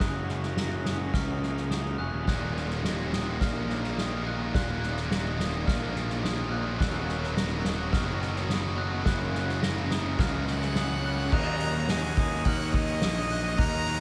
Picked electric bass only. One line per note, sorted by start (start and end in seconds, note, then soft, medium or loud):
0.00 1.10 F#1 medium
1.14 1.95 C#2 medium
1.99 2.12 F1 medium
2.13 2.26 D#1 medium
2.27 3.37 D#1 medium
3.41 4.50 A#1 loud
4.55 5.64 D#1 medium
5.67 6.77 A#1 loud
6.80 7.90 D#1 medium
7.93 9.02 F#1 loud
9.06 10.15 F#1 loud
10.18 11.28 C#2 loud
11.32 12.42 D#2 loud
12.45 12.98 D#2 loud
13.03 13.55 A#1 loud
13.58 14.00 D#2 loud